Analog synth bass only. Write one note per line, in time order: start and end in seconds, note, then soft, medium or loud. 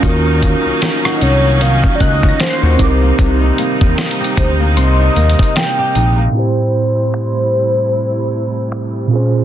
0.03 0.55 D#2 loud
0.66 0.72 C2 medium
1.21 1.87 C2 medium
2.01 2.33 C#2 medium
2.63 2.77 D#2 loud
2.79 3.12 C2 loud
3.19 3.52 C2 loud
3.81 3.95 D#2 loud
4.38 4.78 D2 medium
4.77 5.10 C2 loud
5.16 5.35 D#2 medium
5.95 6.28 A#1 medium